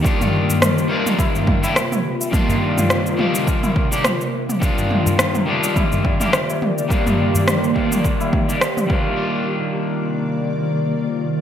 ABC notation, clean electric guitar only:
X:1
M:4/4
L:1/16
Q:"Swing 16ths" 1/4=105
K:Cm
V:1 name="Clean electric guitar"
[E,G,B,DF]6 [E,G,B,DF]4- [E,G,B,DF] [E,G,B,DG] z4 | [E,G,B,DF]6 [E,G,B,DF]4- [E,G,B,DF] [E,G,B,DG] z4 | [E,G,B,DF]6 [E,G,B,DF]4- [E,G,B,DF] [E,G,B,DG] z4 | [E,G,B,DF]6 [E,G,B,DF]4- [E,G,B,DF] [E,G,B,DG] z2 [E,G,B,DF]2- |
[E,G,B,DF]16 |]